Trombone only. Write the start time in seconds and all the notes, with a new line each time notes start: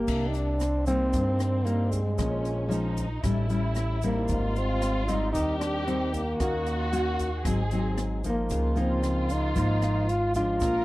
Already playing: A#3
0.28 D#4
0.37 D4
0.87 C4
1.65 A#3
1.93 G#3
4.05 A#3
4.58 C4
5.07 D#4
5.32 D#4
5.59 D4
5.87 C4
6.14 A#3
8.29 A#3
8.80 C4
9.32 D#4
9.57 D#4
10.09 F4
10.36 F4